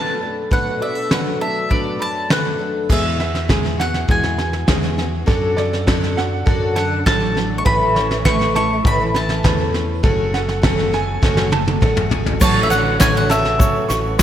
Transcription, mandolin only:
0.00 0.52 A5 medium
0.53 0.80 F#5 medium
0.82 1.12 E5 medium
1.13 1.41 F#5 medium
1.41 1.72 E5 medium
1.71 2.56 D5 medium
2.02 2.32 A5 medium
2.32 2.92 F#5 medium
2.92 3.83 E5 medium
3.81 4.08 F#5 medium
4.11 4.95 G#5 medium
6.76 7.06 F#5 medium
7.06 7.58 A5 medium
7.58 7.65 C#6 medium
7.66 8.25 B5 medium
8.25 8.55 C#6 loud
8.56 8.86 C#6 medium
8.87 9.16 B5 loud
9.16 9.71 A5 medium
12.41 12.62 A5 medium
12.63 12.70 E5 medium
12.70 13.00 F#5 medium
13.01 13.16 G#5 medium
13.17 13.32 F#5 medium
13.31 13.86 E5 medium

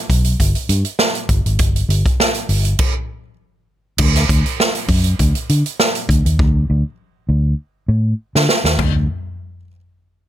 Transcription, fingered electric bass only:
0.10 0.34 B1 medium
0.40 0.53 G1 loud
0.69 0.82 G2 loud
1.29 1.42 G1 loud
1.46 1.60 G#1 medium
1.60 1.84 G1 loud
1.89 2.02 G1 loud
2.49 2.73 G1 loud
3.99 4.23 D2 loud
4.29 4.42 D2 medium
4.88 5.13 F#2 medium
5.19 5.32 D2 loud
5.50 5.62 D3 medium
6.09 6.22 D2 medium
6.25 6.36 D#2 medium
6.39 6.63 D2 loud
6.70 6.82 D2 loud
7.29 7.53 D2 loud
7.88 8.13 A2 loud
8.35 8.46 D3 medium
8.64 8.76 D#2 medium
8.79 9.06 D2 loud

